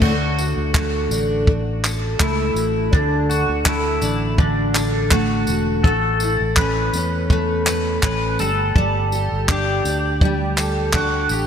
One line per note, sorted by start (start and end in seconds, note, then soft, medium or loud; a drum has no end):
0.00 0.54 D2 loud
0.00 0.10 A2 medium
0.00 1.48 D3 medium
0.00 0.75 A3 medium
0.00 0.11 C#4 medium
0.00 0.11 E4 medium
0.00 2.21 F#4 medium
0.00 1.84 A4 medium
0.00 kick loud
0.00 crash loud
0.39 2.55 F#4 medium
0.39 tambourine medium
0.57 1.06 D2 medium
0.74 2.20 A3 medium
0.74 kick loud
0.74 clap loud
1.09 2.16 A1 medium
1.09 4.00 D4 medium
1.09 tambourine medium
1.47 kick loud
1.84 4.75 A4 medium
1.84 clap medium
1.84 tambourine medium
2.20 2.54 C#2 medium
2.20 3.66 A3 medium
2.20 2.90 E4 medium
2.20 kick loud
2.20 clap loud
2.54 2.89 A1 medium
2.54 3.29 F#4 medium
2.54 tambourine medium
2.93 3.46 D2 loud
2.93 4.37 D3 medium
2.93 3.31 D4 medium
2.93 kick loud
3.29 3.65 F#4 medium
3.29 5.48 F#4 medium
3.29 tambourine medium
3.48 3.98 D2 medium
3.66 5.12 A3 medium
3.66 4.35 E4 medium
3.66 kick loud
3.66 clap loud
4.01 5.44 A1 loud
4.01 5.92 D4 medium
4.01 tambourine medium
4.38 5.92 D3 medium
4.38 5.13 D4 medium
4.38 kick loud
4.75 7.67 A4 medium
4.75 clap loud
4.75 tambourine medium
5.11 5.85 A3 medium
5.11 5.86 F#4 medium
5.11 kick loud
5.11 clap loud
5.47 5.81 E1 medium
5.47 5.93 F#4 medium
5.47 tambourine medium
5.84 6.37 A1 loud
5.84 7.30 A3 medium
5.84 6.59 A4 loud
5.84 kick loud
6.20 8.48 E4 medium
6.20 tambourine medium
6.41 6.89 A1 medium
6.56 6.94 C#4 medium
6.56 8.02 B4 loud
6.56 kick loud
6.56 clap loud
6.93 7.99 E2 medium
6.93 8.02 C#4 medium
6.93 tambourine medium
7.30 8.39 A3 medium
7.30 kick loud
7.67 8.47 B4 medium
7.67 clap medium
7.67 tambourine medium
8.03 8.36 A1 loud
8.03 8.47 C#4 medium
8.03 8.37 B4 medium
8.03 kick loud
8.03 clap loud
8.39 8.72 G1 medium
8.39 8.75 G3 medium
8.39 9.45 A4 loud
8.39 tambourine medium
8.76 9.28 G1 loud
8.76 10.21 G3 medium
8.76 kick loud
9.12 11.30 G4 medium
9.12 tambourine medium
9.32 9.81 G1 medium
9.49 9.86 D4 medium
9.49 10.99 G4 loud
9.49 kick loud
9.49 clap loud
9.84 11.26 D2 loud
9.84 10.95 D4 medium
9.84 tambourine medium
10.21 11.47 G3 medium
10.21 kick loud
10.58 11.47 A4 medium
10.58 clap loud
10.58 tambourine medium
10.93 11.47 D4 medium
10.93 11.31 F#4 medium
10.93 kick loud
10.93 clap loud
11.29 11.47 A1 medium
11.29 11.47 G4 medium
11.29 tambourine medium